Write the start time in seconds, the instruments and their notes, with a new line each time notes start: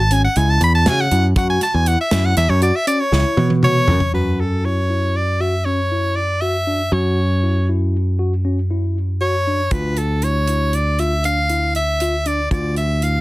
Already playing: picked electric bass G#1
0.00 soprano saxophone A5
0.11 tine electric piano C#4, soprano saxophone G#5, closed hi-hat
0.24 soprano saxophone F#5
0.36 picked electric bass C#2, tine electric piano E4, soprano saxophone G#5, closed hi-hat
0.50 soprano saxophone A5
0.61 picked electric bass E2, soprano saxophone B5, closed hi-hat
0.75 soprano saxophone A5
0.86 picked electric bass C#3, tine electric piano F#4, soprano saxophone G#5, snare, closed hi-hat
1.01 soprano saxophone F#5
1.11 picked electric bass F#2, tine electric piano E4, closed hi-hat
1.36 picked electric bass F#2, tine electric piano F#4, soprano saxophone F#5, kick, closed hi-hat
1.50 soprano saxophone G#5
1.61 soprano saxophone A5, snare, closed hi-hat
1.74 picked electric bass E2, soprano saxophone G#5
1.86 tine electric piano E4, soprano saxophone F#5, closed hi-hat
2.01 soprano saxophone E5
2.11 picked electric bass F#2, tine electric piano E4, snare, closed hi-hat
2.25 soprano saxophone F#5
2.37 picked electric bass E2, soprano saxophone E5, snare, closed hi-hat
2.49 picked electric bass F#2, soprano saxophone C#5
2.62 tine electric piano F#4, soprano saxophone D5, closed hi-hat
2.76 soprano saxophone E5
2.87 tine electric piano C#4, soprano saxophone D5, closed hi-hat
3.00 soprano saxophone C#5
3.12 picked electric bass C#2, tine electric piano E4, snare
3.37 picked electric bass B2, high tom
3.50 high tom
3.63 tine electric piano F#4, soprano saxophone C#5, mid tom
3.88 picked electric bass F#2, tine electric piano C#4, floor tom
4.00 floor tom
4.14 picked electric bass F#2, tine electric piano F#4, soprano saxophone B4
4.40 soprano saxophone A4
4.65 tine electric piano E4, soprano saxophone C#5
4.90 tine electric piano E4
5.16 soprano saxophone D5
5.40 tine electric piano F#4, soprano saxophone E5
5.65 tine electric piano C#4, soprano saxophone C#5
5.92 tine electric piano E4
6.16 soprano saxophone D5
6.41 tine electric piano F#4, soprano saxophone E5
6.67 tine electric piano D4
6.92 picked electric bass F#2, tine electric piano F#4, soprano saxophone C#5
7.43 tine electric piano E4
7.69 tine electric piano E4
8.19 tine electric piano F#4
8.45 tine electric piano C#4
8.71 tine electric piano E4
9.21 tine electric piano F#4, soprano saxophone C#5
9.47 tine electric piano D4
9.71 picked electric bass D2, tine electric piano F4, soprano saxophone B4, kick, closed hi-hat
9.97 soprano saxophone A4, closed hi-hat
10.22 tine electric piano E4, soprano saxophone C#5, closed hi-hat
10.48 tine electric piano E4, closed hi-hat
10.73 soprano saxophone D5, closed hi-hat
10.99 tine electric piano F4, soprano saxophone E5, closed hi-hat
11.24 tine electric piano D4, soprano saxophone F5, closed hi-hat
11.49 tine electric piano E4, closed hi-hat
11.75 soprano saxophone E5, closed hi-hat
12.00 tine electric piano F4, closed hi-hat
12.26 tine electric piano D4, soprano saxophone D5, closed hi-hat
12.51 picked electric bass D2, tine electric piano F4, soprano saxophone D5, kick, closed hi-hat
12.76 soprano saxophone E5, closed hi-hat
13.02 tine electric piano E4, soprano saxophone F5, closed hi-hat